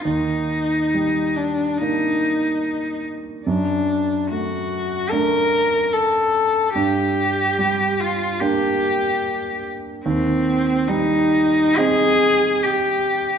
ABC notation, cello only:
X:1
M:4/4
L:1/8
Q:1/4=72
K:Gm
V:1 name="Cello"
E3 D E3 z | D2 ^F2 B2 A2 | G3 F G3 z | [K:Cm] C2 E2 A2 G2 |]